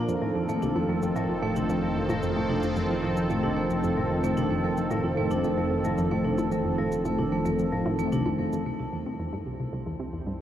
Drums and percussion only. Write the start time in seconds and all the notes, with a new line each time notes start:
0.08 shaker
0.49 shaker
0.62 shaker
0.76 low bongo
1.02 shaker
1.16 shaker
1.56 shaker
1.69 shaker
2.09 low bongo, shaker
2.23 shaker
2.63 shaker
2.76 shaker
2.90 low bongo
3.17 shaker
3.30 shaker
3.70 shaker
3.84 shaker
4.24 shaker
4.37 shaker
4.77 shaker
4.91 shaker
5.04 low bongo
5.31 shaker
5.44 shaker
5.84 shaker
5.98 shaker
6.38 low bongo, shaker
6.52 shaker
6.92 shaker
7.05 shaker
7.19 low bongo
7.45 shaker
7.59 shaker
7.86 low bongo
7.99 shaker
8.12 shaker
8.26 low bongo
8.53 shaker